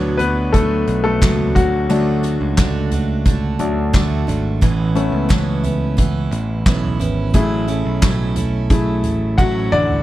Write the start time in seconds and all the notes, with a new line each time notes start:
Already playing: D2 B2 F#3 B3 D4 E4 F#4 C#5
0.17 B3 D4 F#4 B4, closed hi-hat, floor tom
0.22 B3
0.53 F#3 A3 B3 D4 F#4 A4, kick, closed hi-hat
0.87 B1, closed hi-hat
1.04 A3 A4
1.21 C#2 B2 F#3 B3 D4 F#4, kick, snare, clap, closed hi-hat
1.39 floor tom
1.55 D2 F#3 A3 D4 F#4, kick, closed hi-hat, floor tom
1.89 D2 D3 F#3 A3 D4 F#4, closed hi-hat
2.23 A3 D4 F#4, closed hi-hat
2.41 C#2
2.57 D3 A3 D4 F#4, kick, snare, clap, closed hi-hat
2.92 A3 D4 F#4, closed hi-hat, floor tom
3.26 D3 A3 D4 F#4, kick, closed hi-hat
3.59 D2 F#3 A3 D4, closed hi-hat, floor tom
3.93 D3 A3 D4 F#4, kick, snare, clap, closed hi-hat
4.11 floor tom
4.27 G#1 A3 D4 F#4, closed hi-hat, floor tom
4.61 A1 A2 E3 B3 C#4 E4, kick, closed hi-hat
4.95 A3 B3 C#4 E4, closed hi-hat
5.12 C#2
5.29 A2 E3 B3 C#4 E4, kick, snare, clap, closed hi-hat
5.64 B3 C#4 E4, closed hi-hat, floor tom
5.97 E3 B3 C#4 E4, kick, closed hi-hat
6.31 A1, closed hi-hat
6.66 B1 A2 E3 B3 C#4 E4, kick, snare, clap, closed hi-hat
6.84 floor tom
7.00 G#1 B3 C#4 E4, closed hi-hat, floor tom
7.34 A1 A2 F#3 A3 C#4 E4 G#4, kick, closed hi-hat
7.68 A3 C#4 E4, closed hi-hat
7.85 B1
8.02 A2 F#3 A3 C#4 E4, kick, snare, clap, closed hi-hat
8.36 A3 C#4 E4, closed hi-hat, floor tom
8.70 F#3 A3 C#4 E4 G#4, kick, closed hi-hat
9.04 A1, closed hi-hat, floor tom
9.38 A2 F#3 A3 C#4 E4 F#4 F#5, kick, high tom
9.72 A1 D3 A3 C#4 E4 D5, mid tom
9.90 floor tom